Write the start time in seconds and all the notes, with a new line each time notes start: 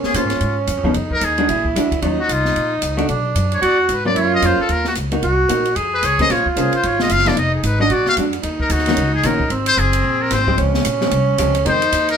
Already playing: A#3 C#4 G#4 C5
0.04 G#4, muted upright bass stroke, snare
0.14 A#2 A#3 C#4 F4 G#4 C5, kick, hi-hat pedal, ride
0.23 G#2
0.30 F2, snare, ride
0.41 G#2, kick, ride
0.67 F#2, kick, hi-hat pedal, ride
0.77 F2
0.84 C#2 F3 B3 D#4 G#4, kick
0.94 F2 D#4, kick, ride
1.11 A#4, kick
1.21 D#2 G#4, kick, hi-hat pedal, ride
1.38 G#3 D4 F#4, ride
1.49 A#1 E4, kick, ride
1.65 kick
1.75 D2 G#3 D4 F#4, kick, hi-hat pedal, ride
1.92 kick, ride
2.02 D#2 D#3 F#3 C#4 D#4 F4, kick, ride
2.20 F#4
2.29 C2 F4, kick, hi-hat pedal, ride
2.45 snare
2.56 A#1, kick, ride
2.82 C#2, kick, hi-hat pedal, ride
2.97 A3 D4 F#4, ride
3.09 B1 D4, kick, ride
3.35 F#2, kick, hi-hat pedal, ride
3.52 C#5, ride
3.62 E2 F#4 D5, kick, ride
3.81 F#4
3.89 G#2 B4, kick, hi-hat pedal, ride
4.05 F#3 A#3 C#4 F4 D5
4.15 F#2 F4 C#5, kick, ride
4.34 D#5
4.42 F2 F#3 A#3 C#4 F4 C5, kick, hi-hat pedal, ride
4.59 A4, muted upright bass stroke
4.69 D#2 A#4, kick, ride
4.85 F#4, snare
4.95 C#2, kick, hi-hat pedal, ride
5.12 A#3 D#4 F#4, ride
5.22 C2 F#4, kick, ride
5.49 A#1 A#3 D#4 F#4, kick, hi-hat pedal, ride
5.65 ride
5.76 F2 G#4, kick, ride
5.94 B4
6.03 C#2 C#5, kick, hi-hat pedal, ride
6.19 A#3 C#4 G#4 C5 D#5, kick, ride
6.30 A#1 F4 C#5, kick, snare, ride
6.46 F4, muted upright bass stroke, kick
6.56 C2 A#3 C#4 G#4 C5, kick, hi-hat pedal, ride
6.73 C5, muted upright bass stroke, ride
6.83 G#1 C#5, kick, ride
6.99 D#5, snare
7.09 F#1 F5, kick, hi-hat pedal, ride
7.19 snare
7.26 F3 B3 D#4 G#4 D5, snare, ride
7.37 F1 D#4 D#5, kick, ride
7.55 G#4
7.63 G#1 B4, kick, hi-hat pedal, ride
7.80 G#3 D4 F#4 D#5
7.90 A#1 F#4 D5, kick, ride
8.06 F5, muted upright bass stroke, snare
8.17 F2 G#3 D4 F#4, kick, hi-hat pedal, ride
8.33 ride
8.43 D#2 D#4, kick, ride
8.60 A#4, kick
8.70 D2 F#4, kick, hi-hat pedal, ride
8.79 snare
8.86 D#3 A#3 C#4 F#4, snare, ride
8.97 C#2, kick, ride
9.15 G#4
9.23 A#1 D#3 A#3 C#4 F#4 A#4, kick, hi-hat pedal, ride
9.40 kick
9.50 G#1 C4, kick, ride
9.66 C5, ride
9.77 F#1 G#4, kick, hi-hat pedal
9.93 ride
10.04 A#1, kick
10.22 A#4
10.31 G#1 C5, kick, snare, hi-hat pedal, ride
10.47 F3 G#3 C4, kick
10.58 C#2 C#4, kick, ride
10.74 snare
10.85 A#1, kick, hi-hat pedal, ride
11.01 F3 G#3 C4, snare
11.11 C2, kick, ride
11.38 C#2 F3 G#3 C4, kick, hi-hat pedal, ride
11.55 ride
11.65 F2 D#3 G#3 C4 D#4 C5, kick, ride
11.82 ride
11.92 D#2, kick, hi-hat pedal, ride
12.09 A#4, ride